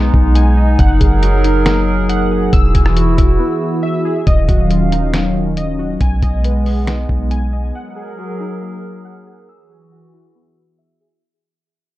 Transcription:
Already playing: 808-style bass B1, analog synth pad G#3 B3 D#4, synth keys D#4 G#4 B4 D#5 G#5
0.14 808-style bass B1, kick
0.35 synth keys G#5, closed hi-hat
0.57 synth keys D#5
0.79 808-style bass F#1, analog synth pad F#3 G#4 A#4, synth keys F#5, kick, closed hi-hat
1.00 808-style bass F#1, synth keys G#4, kick, closed hi-hat
1.23 synth keys F#4, closed hi-hat
1.44 synth keys D#4, closed hi-hat
1.66 synth keys A#3, snare, closed hi-hat
2.09 synth keys F#5, closed hi-hat
2.31 synth keys G#4
2.53 808-style bass E1, analog synth pad E3 E4 F#4, synth keys E6, kick, closed hi-hat
2.75 808-style bass E1, synth keys G#4, kick, closed hi-hat
2.86 cross-stick
2.96 synth keys F#4, closed hi-hat
3.18 808-style bass E1, synth keys E4, kick, closed hi-hat
3.40 synth keys B3
3.83 synth keys E5
4.05 synth keys G#4
4.27 808-style bass D#1, analog synth pad D#3 F#3 C#4 F5, synth keys D#5, kick, closed hi-hat
4.48 808-style bass D#1, synth keys F#4, kick, closed hi-hat
4.70 synth keys F4, closed hi-hat
4.92 synth keys D#4, closed hi-hat
5.14 synth keys C#4, snare, closed hi-hat
5.57 synth keys D#5, closed hi-hat
5.79 synth keys F#4
6.01 808-style bass B1, analog synth pad G#3 B3, synth keys G#5, kick, closed hi-hat
6.23 808-style bass B1, synth keys D#5, kick, closed hi-hat
6.44 synth keys B4, closed hi-hat
6.66 synth keys G#4, open hi-hat
6.87 synth keys D#4, snare, closed hi-hat
7.09 808-style bass B1, kick
7.31 synth keys G#5, closed hi-hat
7.53 synth keys D#5
7.75 analog synth pad F#3 G#4 A#4, synth keys F#5
7.96 synth keys G#4
8.18 synth keys F#4
8.40 synth keys D#4
8.62 synth keys A#3
9.05 synth keys F#5
9.27 synth keys G#4
9.48 analog synth pad E3 F#4, synth keys E6
9.70 synth keys G#4
9.92 synth keys F#4
10.13 synth keys E4
10.35 synth keys B3
10.79 synth keys E5
11.01 synth keys G#4

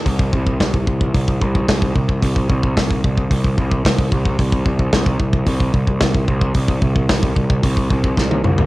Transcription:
0.06 picked electric bass C2, kick, open hi-hat
0.19 kick
0.33 picked electric bass C2, kick
0.47 kick
0.60 picked electric bass C2, kick, snare, open hi-hat
0.74 kick
0.87 picked electric bass C2, kick
1.01 kick
1.14 picked electric bass C2, kick, open hi-hat
1.28 kick
1.42 picked electric bass C2, kick
1.55 kick
1.69 picked electric bass C2, kick, snare, open hi-hat
1.82 kick
1.95 picked electric bass C2, kick
2.09 kick
2.22 picked electric bass C2, kick, open hi-hat
2.36 kick
2.50 picked electric bass C2, kick
2.63 kick
2.77 picked electric bass C2, kick, snare, open hi-hat
2.90 kick
3.04 picked electric bass C2, kick
3.17 kick
3.31 picked electric bass C2, kick, open hi-hat
3.44 kick
3.58 picked electric bass C2, kick
3.71 kick
3.85 picked electric bass C2, kick, snare, open hi-hat
3.98 kick
4.12 picked electric bass C2, kick
4.26 kick
4.39 picked electric bass C2, kick, open hi-hat
4.52 kick
4.66 picked electric bass C2, kick
4.79 kick
4.93 picked electric bass C2, kick, snare, open hi-hat
5.06 kick
5.20 picked electric bass C2, kick
5.33 kick
5.47 picked electric bass C2, kick, open hi-hat
5.60 kick
5.74 picked electric bass C2, kick
5.87 kick
6.00 picked electric bass C2, kick, snare, open hi-hat
6.14 kick
6.28 picked electric bass C2, kick
6.41 kick
6.54 picked electric bass C2, kick, open hi-hat
6.68 kick
6.82 picked electric bass C2, kick
6.95 kick
7.09 picked electric bass C2, kick, snare, open hi-hat
7.23 kick
7.36 picked electric bass C2, kick
7.50 kick
7.63 picked electric bass C2, kick, open hi-hat
7.77 kick
7.90 picked electric bass C2, kick
8.04 kick
8.17 picked electric bass C2, kick, snare
8.31 high tom
8.44 picked electric bass C2, mid tom
8.58 floor tom

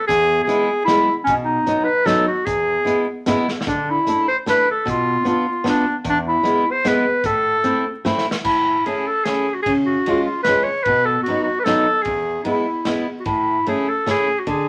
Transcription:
0.07 steel-string acoustic guitar E2, clarinet G#4, kick, closed hi-hat
0.44 steel-string acoustic guitar G#3, clarinet G#4
0.48 steel-string acoustic guitar B3 E4, closed hi-hat
0.85 steel-string acoustic guitar G#3 B3, clarinet E4, snare, closed hi-hat
0.89 steel-string acoustic guitar E4
1.24 clarinet C#4, kick, closed hi-hat
1.28 steel-string acoustic guitar B2
1.43 clarinet D#4
1.66 steel-string acoustic guitar F#3 B3 D#4, closed hi-hat
1.84 clarinet B4
2.06 steel-string acoustic guitar F#3 B3 D#4, clarinet A4, snare, closed hi-hat
2.27 clarinet F#4
2.45 steel-string acoustic guitar E2, clarinet G#4, kick, closed hi-hat
2.85 steel-string acoustic guitar G#3 B3 E4, closed hi-hat
3.26 steel-string acoustic guitar G#3 B3 E4, snare, closed hi-hat
3.49 snare
3.61 snare
3.67 steel-string acoustic guitar D3, clarinet D4, kick, closed hi-hat
3.91 clarinet E4
4.07 steel-string acoustic guitar A3 D4 E4, closed hi-hat
4.28 clarinet C5
4.46 steel-string acoustic guitar A3 D4 E4, clarinet B4, snare, closed hi-hat
4.71 clarinet A4
4.85 steel-string acoustic guitar B2, kick, closed hi-hat
4.90 clarinet F4
5.25 steel-string acoustic guitar B3 D4 F4, clarinet F4, closed hi-hat
5.64 steel-string acoustic guitar B3 D4 F4, snare, closed hi-hat
5.69 clarinet D4
6.04 steel-string acoustic guitar E2, kick, closed hi-hat
6.10 clarinet D4
6.28 clarinet E4
6.43 steel-string acoustic guitar G#3 B3 E4, closed hi-hat
6.71 clarinet C5
6.85 steel-string acoustic guitar G#3 B3 E4, clarinet B4, snare, closed hi-hat
7.24 steel-string acoustic guitar A2, clarinet A4, kick, closed hi-hat
7.64 steel-string acoustic guitar A3 C4 E4, closed hi-hat
8.05 steel-string acoustic guitar A3 C4 E4, snare
8.18 snare
8.31 snare
8.44 steel-string acoustic guitar A2, clarinet E4, kick, crash
8.86 steel-string acoustic guitar A3 C#4 E4, clarinet G#4, ride
9.07 clarinet A4
9.24 steel-string acoustic guitar A3 C#4 E4, clarinet G#4, snare, ride
9.54 clarinet F#4
9.63 steel-string acoustic guitar C#3, clarinet G#4, kick, ride
9.85 clarinet F#4
10.06 steel-string acoustic guitar G#3 C#4 F4, ride
10.24 clarinet F4
10.43 clarinet B4, snare, ride
10.47 steel-string acoustic guitar G#3 C#4 F4
10.64 clarinet C#5
10.84 steel-string acoustic guitar B2, clarinet B4, kick, ride
11.05 clarinet A4
11.23 clarinet F#4, ride
11.28 steel-string acoustic guitar F#3 B3 D#4
11.43 clarinet F#4
11.60 clarinet B4
11.64 steel-string acoustic guitar F#3 B3 D#4, clarinet A4, snare, ride
12.02 clarinet G#4, kick, ride
12.07 steel-string acoustic guitar E2
12.44 steel-string acoustic guitar G#3 B3 E4, clarinet E4, ride
12.85 steel-string acoustic guitar G#3 B3 E4, snare, ride
13.20 clarinet F#4
13.25 steel-string acoustic guitar A2, clarinet E4, kick, ride
13.66 steel-string acoustic guitar A3 C#4 E4, clarinet G#4, ride
13.89 clarinet A4
14.06 steel-string acoustic guitar A3 C#4 E4, clarinet G#4, snare, ride
14.39 clarinet F#4
14.47 steel-string acoustic guitar D3, clarinet G#4, kick, ride

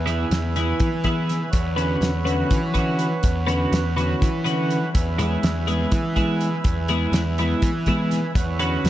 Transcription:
Already playing: picked electric bass E2, harmonium B4 E5 G#5 B5
0.06 clean electric guitar E3 B3 E4 G#4, closed hi-hat
0.31 picked electric bass E2, snare, closed hi-hat
0.56 clean electric guitar E3 B3 E4 G#4, snare, closed hi-hat
0.80 picked electric bass E3, kick, closed hi-hat
1.04 clean electric guitar E3 B3 E4 G#4, kick, snare, closed hi-hat
1.29 snare, closed hi-hat
1.50 picked electric bass E2, harmonium B4 C#5 F#5, kick, closed hi-hat
1.76 clean electric guitar D3 C#4 F#4 B4, closed hi-hat
2.01 picked electric bass E2, snare, closed hi-hat
2.25 clean electric guitar D3 C#4 F#4 B4, closed hi-hat
2.51 picked electric bass E3, kick, closed hi-hat
2.74 clean electric guitar D3 C#4 F#4 B4, kick, closed hi-hat
2.99 closed hi-hat
3.23 picked electric bass E2, kick, closed hi-hat
3.47 clean electric guitar D3 C#4 F#4 B4, closed hi-hat
3.72 picked electric bass E2, snare, closed hi-hat
3.97 clean electric guitar D3 C#4 F#4 B4, closed hi-hat
4.22 picked electric bass E3, kick, closed hi-hat
4.44 clean electric guitar D3 C#4 F#4 B4, closed hi-hat
4.71 closed hi-hat
4.94 picked electric bass E2, harmonium B4 E5 G#5, kick, closed hi-hat
5.18 clean electric guitar G#3 B3 E4 G#4, closed hi-hat
5.43 picked electric bass E2, snare, closed hi-hat
5.67 clean electric guitar G#3 B3 E4 G#4, closed hi-hat
5.92 picked electric bass E3, kick, closed hi-hat
6.16 clean electric guitar G#3 B3 E4 G#4, kick, closed hi-hat
6.41 closed hi-hat
6.64 picked electric bass E2, kick, closed hi-hat
6.88 clean electric guitar G#3 B3 E4 G#4, closed hi-hat
7.12 picked electric bass E2, snare, closed hi-hat
7.38 clean electric guitar G#3 B3 E4 G#4, closed hi-hat
7.62 picked electric bass E3, kick, closed hi-hat
7.86 clean electric guitar G#3 B3 E4 G#4, kick, closed hi-hat
8.11 snare, closed hi-hat
8.35 picked electric bass E2, harmonium B4 C#5 F#5 B5, kick, closed hi-hat
8.59 clean electric guitar D3 C#4 F#4 B4, closed hi-hat
8.84 picked electric bass E2, snare, closed hi-hat

